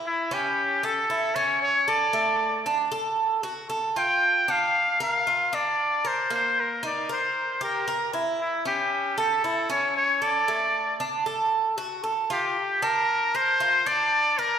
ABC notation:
X:1
M:4/4
L:1/8
Q:1/4=115
K:Dphr
V:1 name="Muted trumpet"
=E G2 A2 ^c c d- | d2 z4 z g- | g f2 f2 d2 c | c B d c2 B2 z |
=E G2 A2 ^c c d- | d2 z4 z G- | G B2 c2 d2 B |]
V:2 name="Cuban tres"
=E ^C2 A E C2 A | A,2 D A2 ^F A =F- | F D2 B F D2 B | B,2 E B2 G B =E- |
=E ^C2 A E C2 A | A,2 D A2 ^F A =F | z D2 B F D2 B |]